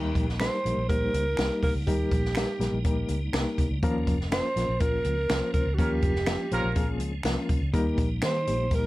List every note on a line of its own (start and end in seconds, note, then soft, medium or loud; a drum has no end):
0.00 0.12 D#2 loud
0.00 0.25 G3 loud
0.00 3.79 G3 medium
0.00 0.25 A#3 loud
0.00 5.74 A#3 medium
0.00 0.25 D#4 loud
0.00 3.79 D#4 medium
0.00 0.28 G4 loud
0.00 0.25 A#4 loud
0.15 0.47 A#1 medium
0.15 kick medium
0.15 closed hi-hat medium
0.29 snare soft
0.40 0.57 G3 medium
0.40 0.57 A#3 medium
0.40 0.57 D#4 medium
0.40 0.57 G4 medium
0.40 0.57 A#4 medium
0.40 0.85 C5 loud
0.40 finger snap loud
0.40 snare loud
0.40 closed hi-hat loud
0.65 0.76 A#1 medium
0.65 0.82 G3 medium
0.65 0.82 A#3 medium
0.65 0.82 D#4 medium
0.65 0.82 G4 medium
0.65 0.82 A#4 medium
0.65 closed hi-hat medium
0.77 1.09 A#1 medium
0.89 1.23 G3 medium
0.89 1.24 A#3 medium
0.89 1.24 D#4 medium
0.89 1.24 G4 medium
0.89 1.58 A#4 loud
0.89 1.24 C5 medium
0.89 kick medium
0.89 closed hi-hat medium
1.14 1.35 C#2 loud
1.14 closed hi-hat medium
1.37 1.49 C2 loud
1.37 1.72 G3 medium
1.37 1.73 A#3 medium
1.37 1.73 D#4 medium
1.37 1.44 F#4 medium
1.37 1.73 A#4 medium
1.37 finger snap medium
1.37 snare loud
1.37 closed hi-hat loud
1.45 1.76 G4 medium
1.62 1.73 C2 medium
1.62 1.74 A#4 medium
1.62 kick medium
1.62 open hi-hat medium
1.75 1.86 C#2 medium
1.87 2.08 D#2 loud
1.87 2.21 G3 medium
1.87 2.21 A#3 medium
1.87 2.21 D#4 medium
1.87 2.21 G4 medium
1.87 2.81 G4 medium
1.87 2.21 A#4 loud
1.87 kick loud
1.87 closed hi-hat medium
2.11 2.43 A#1 loud
2.11 kick loud
2.11 closed hi-hat medium
2.25 snare soft
2.35 2.53 G3 medium
2.35 2.53 A#3 medium
2.35 2.53 D#4 medium
2.35 2.53 G4 medium
2.35 2.53 A#4 medium
2.35 finger snap loud
2.35 snare loud
2.35 closed hi-hat loud
2.59 2.70 A#1 medium
2.59 2.77 G3 medium
2.59 2.77 A#3 medium
2.59 2.78 D#4 medium
2.59 2.78 G4 medium
2.59 2.78 A#4 medium
2.59 snare soft
2.59 closed hi-hat medium
2.72 3.04 A#1 medium
2.84 3.19 G3 medium
2.84 3.19 A#3 medium
2.84 3.19 D#4 medium
2.84 3.19 G4 medium
2.84 3.20 A#4 medium
2.84 kick medium
2.84 closed hi-hat medium
3.09 3.31 C#2 medium
3.09 closed hi-hat medium
3.33 3.44 C2 medium
3.33 3.68 G3 medium
3.33 3.68 A#3 medium
3.33 3.68 D#4 medium
3.33 3.68 G4 medium
3.33 3.68 A#4 loud
3.33 finger snap medium
3.33 snare loud
3.33 closed hi-hat medium
3.58 3.69 C2 medium
3.58 kick medium
3.58 closed hi-hat medium
3.71 3.81 C#2 medium
3.83 4.04 D#2 loud
3.83 4.17 F3 loud
3.83 7.70 F3 medium
3.83 4.17 A#3 loud
3.83 4.17 C#4 loud
3.83 7.70 C#4 medium
3.83 4.18 F4 loud
3.83 4.18 A#4 loud
3.83 kick loud
3.83 closed hi-hat medium
4.07 4.39 F1 medium
4.07 kick loud
4.07 closed hi-hat medium
4.21 snare soft
4.31 4.49 F3 medium
4.31 4.48 A#3 medium
4.31 4.49 C#4 medium
4.31 4.49 F4 medium
4.31 4.49 A#4 medium
4.31 4.82 C5 loud
4.31 finger snap loud
4.31 snare loud
4.31 closed hi-hat loud
4.56 4.67 A#1 medium
4.56 4.73 F3 medium
4.56 4.73 A#3 medium
4.56 4.73 C#4 medium
4.56 4.73 F4 medium
4.56 4.74 A#4 medium
4.56 snare soft
4.56 closed hi-hat medium
4.68 5.00 A#1 medium
4.80 5.15 F3 medium
4.80 5.15 A#3 medium
4.80 5.15 C#4 medium
4.80 5.16 F4 medium
4.80 5.53 A#4 loud
4.80 5.16 A#4 medium
4.80 kick loud
4.80 closed hi-hat medium
5.04 5.26 C#2 medium
5.04 closed hi-hat medium
5.29 5.40 C2 medium
5.29 5.64 F3 medium
5.29 5.64 A#3 medium
5.29 5.64 C#4 medium
5.29 5.65 F4 medium
5.29 5.36 A#4 medium
5.29 finger snap medium
5.29 snare loud
5.29 closed hi-hat medium
5.37 5.68 C5 medium
5.53 5.64 C2 medium
5.53 5.76 A#4 medium
5.53 kick medium
5.53 closed hi-hat medium
5.66 5.77 C#2 medium
5.74 7.72 G#3 medium
5.74 5.80 F#4 medium
5.74 6.76 G4 medium
5.78 6.00 D#2 loud
5.78 6.13 F3 loud
5.78 6.13 A#3 medium
5.78 5.89 C#4 medium
5.78 6.13 C#4 medium
5.78 6.13 F4 medium
5.78 5.89 F4 medium
5.78 5.89 A#4 medium
5.78 6.13 A#4 loud
5.78 kick loud
5.78 closed hi-hat medium
6.02 6.35 F1 medium
6.02 kick medium
6.02 closed hi-hat medium
6.16 snare soft
6.26 6.45 F3 medium
6.26 6.45 A#3 medium
6.26 6.45 C#4 medium
6.26 6.45 F4 medium
6.26 6.45 G4 medium
6.26 finger snap loud
6.26 snare loud
6.26 closed hi-hat loud
6.51 6.62 A#1 medium
6.51 6.69 F3 medium
6.51 6.69 A#3 medium
6.51 6.69 C#4 medium
6.51 6.87 C#4 medium
6.51 6.87 F4 medium
6.51 6.69 F4 medium
6.51 6.87 A#4 loud
6.51 6.69 C5 medium
6.51 closed hi-hat medium
6.64 7.00 A#1 medium
6.76 7.10 F3 medium
6.76 7.10 A#3 medium
6.76 6.82 C4 medium
6.76 7.11 F4 medium
6.76 7.11 G#4 medium
6.76 kick medium
6.76 closed hi-hat medium
6.82 7.13 C#4 medium
7.00 7.22 C#2 medium
7.00 closed hi-hat medium
7.23 7.35 C2 medium
7.23 7.59 F3 medium
7.23 7.59 A#3 medium
7.23 7.59 C#4 medium
7.23 7.59 F4 medium
7.23 7.59 A#4 medium
7.23 finger snap medium
7.23 snare loud
7.23 closed hi-hat medium
7.49 7.60 C2 medium
7.49 kick medium
7.49 closed hi-hat medium
7.61 7.72 C#2 medium
7.72 7.95 D#2 loud
7.72 8.87 G3 medium
7.72 8.08 G3 loud
7.72 8.87 A#3 medium
7.72 8.08 A#3 loud
7.72 8.87 D#4 medium
7.72 8.08 D#4 loud
7.72 8.08 G4 loud
7.72 8.08 A#4 loud
7.72 kick loud
7.72 closed hi-hat medium
7.98 8.19 A#1 medium
7.98 kick medium
7.98 closed hi-hat medium
8.22 8.49 D#3 loud
8.22 8.40 G3 medium
8.22 8.40 A#3 medium
8.22 8.40 D#4 medium
8.22 8.40 G4 medium
8.22 8.40 C5 medium
8.22 8.76 C5 loud
8.22 finger snap loud
8.22 snare loud
8.22 closed hi-hat loud
8.47 8.87 A#1 medium
8.47 8.64 G3 medium
8.47 8.65 A#3 medium
8.47 8.65 D#4 medium
8.47 8.65 G4 medium
8.47 8.65 C5 medium
8.47 closed hi-hat medium
8.71 8.87 G3 medium
8.71 8.87 A#3 medium
8.71 8.87 D#4 medium
8.71 8.87 G4 medium
8.71 8.87 A#4 medium
8.71 8.87 A#4 loud
8.71 kick medium
8.71 closed hi-hat medium